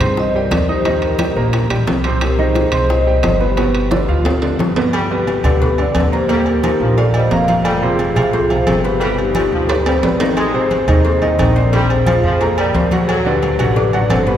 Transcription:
Already playing: G#4 C5
0.00 G2 C4 C5 C6, high bongo, high conga, low conga, high timbale
0.17 C5 D#5, high bongo, high conga
0.34 G3 G4 A#4 D5 G5, high conga
0.51 D#2, high bongo, low bongo, high conga, high timbale, low timbale
0.68 D#4 G4 C5 D#5 D#6, high bongo, high conga
0.85 D#3 D#4 D#5, high bongo, high conga, high timbale
1.02 G4 A#4, high conga, high timbale
1.19 G3 G4 G5, high bongo, high conga, high timbale, low timbale
1.35 A#1 A#3 A#4 A#5, high bongo, high conga
1.53 high bongo, high conga, high timbale
1.69 A#1 G3 G4 G5, high bongo, high conga, high timbale
1.87 C2, high bongo, low bongo, high conga, low timbale
2.04 C3 C4 C5, high bongo, high timbale
2.21 G4 A#4, high bongo, high conga, high timbale
2.38 D#3 D#4 G#4 C5 D#5, high bongo, high conga
2.55 high bongo, high conga, high timbale, low timbale
2.72 C2 C4 C5 C6, high bongo, high conga, low conga, high timbale
2.89 C5 D#5, high bongo, high conga
3.06 G3 G4 G5, high conga
3.23 G1, high bongo, low bongo, high conga, high timbale, low timbale
3.40 B3 G4 B4 B5, high bongo, high conga
3.57 B2 B3 B4, high bongo, high conga, high timbale
3.74 high conga, high timbale
3.91 D3 D4 D5, high bongo, high conga, high timbale
4.08 D2 F3 F4 F5, high bongo, high conga
4.25 high bongo, high conga, low timbale
4.42 D3 D4 D5, high bongo, high conga, low timbale
4.59 G1, high bongo, low bongo, high conga, low timbale
4.76 B2 B3 B4, high bongo, low timbale
4.93 G3, cowbell, high conga, low agogo
5.11 B2 B3 G4 B4, high conga
5.27 cowbell, high conga, low timbale, low agogo
5.43 D2 D3 D4 G4 B4 D5, cowbell, high conga, low conga, low agogo
5.62 B3 B4 B5, cowbell, high conga, low conga
5.78 D3 D4 B4 D5, high conga, low agogo
5.95 D#2 D3, cowbell, high conga, low timbale, low agogo
6.12 A#3 G4 A#4 C5 A#5, cowbell, high conga
6.28 A#2 G3 A#3 A#4, cowbell, high conga, low agogo
6.46 G4 A#4, high conga, low agogo
6.63 D#3 F3 D#4 D#5, cowbell, high conga, low timbale, low agogo
6.80 A#1 F3, high conga
6.97 F3 F4 A#4 D5 F5, cowbell, high conga, low agogo
7.14 G3 C5 D#5, high conga, low agogo
7.31 F1 A#3 A#4 F5 A#5, cowbell, high conga, low timbale
7.48 F3 F4 F5, cowbell, high conga, low agogo
7.64 G3, cowbell, high conga, low agogo
7.77 A#4
7.82 C3 C4 F4 G#4 C5, high conga
7.99 cowbell, high conga, low timbale, low agogo
8.16 C2 C3 F3 F4 G#4 F5, cowbell, high conga, low conga, low agogo
8.33 C4 C5 C6, cowbell, high conga, low conga
8.50 C3 F3 F4 G#4 C5 F5, high conga, low agogo
8.67 G1 C3, cowbell, high conga, low timbale, low agogo
8.84 B3 G4 B4 B5, cowbell, high conga
9.00 B2 G3 B3 B4, cowbell, high conga, low agogo
9.18 D#4 G4, high conga, low agogo
9.35 B2 F3 B3 D5, cowbell, high conga, low timbale, low agogo
9.52 D2 F3, high conga
9.69 G3 G4 B4 G5, cowbell, high conga, high timbale, low agogo
9.86 G3 C5, high conga, low timbale, low agogo
10.03 G#1 B3 B4 D5 B5, cowbell, high conga, low timbale
10.20 D#3 D#4 D#5, cowbell, low timbale, low agogo
10.37 G#3, cowbell, high conga, low agogo
10.54 C3 C4 G#4 C5, high conga
10.71 cowbell, high conga, low timbale, low agogo
10.88 D#2 D#3 D#4 G#4 C5 D#5, cowbell, high conga, low conga, low agogo
11.05 C4 C5 C6, cowbell, high conga
11.22 D#3 D#4 C5 D#5, high conga, low agogo
11.39 A#1 D#3, cowbell, high conga, low timbale, low agogo
11.56 C4 A#4 C5 D5 C6, cowbell, high conga
11.73 C3 G3 C4 C5, cowbell, high conga, low agogo
11.90 G#4 C5, high conga, low agogo
12.06 F3 F4 F5, cowbell, high conga, low timbale, low agogo
12.23 F2 F3 G#4 C5, high conga
12.41 A#3 A#4 A#5, cowbell, high conga, low agogo
12.57 G3 A#4 D5, high conga, low agogo
12.74 D2 C4 C5 C6, cowbell, high conga, low timbale
12.91 F#3 F#4 G#4 C5 F#5, cowbell, high conga, low agogo
13.08 F#3, cowbell, high conga, low agogo
13.25 D3 D4 G4 B4 D5, high conga
13.42 cowbell, high conga, low timbale, low agogo
13.59 A1 D3 F#3 F#4 G4 B4 F#5, cowbell, high conga, low conga, low agogo
13.76 D4 D5 D6, cowbell, high conga, low conga
13.93 D3 F#3 F#4 B4 D5 F#5, high conga, low agogo
14.09 G1 D3 A4 C5, cowbell, high conga, low timbale, low agogo
14.27 B3 G4 B4 B5, cowbell, high conga

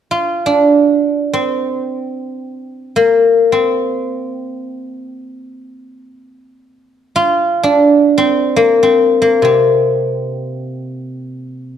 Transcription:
0.11 F4
0.46 D4
1.33 C4
2.96 A#3
3.52 C4
7.16 F4
7.63 D4
8.18 C4
8.56 A#3
8.83 C4
9.22 A#3
9.42 C3 C4

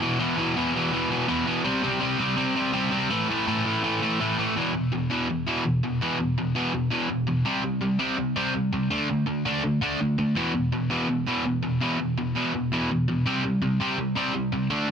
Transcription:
0.01 E2 B2 E3
0.19 E2 B2 E3
0.37 E2 B2 E3
0.56 E2 B2 E3
0.74 E2 B2 E3
0.92 E2 B2 E3
1.10 E2 B2 E3
1.27 E2 B2 E3
1.47 E2 B2 E3
1.64 C3 G3 C4
1.83 C3 G3 C4
2.00 C3 G3 C4
2.19 C3 G3 C4
2.36 C3 G3 C4
2.56 C3 G3 C4
2.73 C3 G3 C4
2.91 C3 G3 C4
3.10 A2 E3 A3
3.29 A2 E3 A3
3.47 A2 E3 A3
3.65 A2 E3 A3
3.83 A2 E3 A3
4.02 A2 E3 A3
4.20 A2 E3 A3
4.38 A2 E3 A3
4.55 E2 B2 E3
4.74 E2 B2
4.92 E2 B2
5.10 E2 B2 E3
5.29 E2 B2
5.47 E2 B2 E3
5.65 E2 B2
5.83 E2 B2
6.01 E2 B2 E3
6.19 E2 B2
6.38 E2 B2
6.55 E2 B2 E3
6.74 E2 B2
6.91 E2 B2 E3
7.09 E2 B2
7.27 E2 B2
7.45 C3 G3 C4
7.63 C3 G3
7.81 C3 G3
7.99 C3 G3 C4
8.18 C3 G3
8.36 C3 G3 C4
8.54 C3 G3
8.73 C3 G3
8.90 D3 A3 D4
9.09 D3 A3
9.26 D3 A3
9.45 D3 A3 D4
9.63 D3 A3
9.81 D3 A3 D4
10.00 D3 A3
10.18 D3 A3
10.35 E2 B2 E3
10.55 E2 B2
10.72 E2 B2
10.90 E2 B2 E3
11.09 E2 B2
11.27 E2 B2 E3
11.46 E2 B2
11.62 E2 B2
11.80 E2 B2 E3
11.99 E2 B2
12.18 E2 B2
12.36 E2 B2 E3
12.54 E2 B2
12.72 E2 B2 E3
12.91 E2 B2
13.08 E2 B2
13.26 C3 G3 C4
13.44 C3 G3
13.62 C3 G3
13.80 C3 G3 C4
13.98 C3 G3
14.15 C3 G3 C4
14.34 C3 G3
14.52 C3 G3
14.70 D3 A3 D4

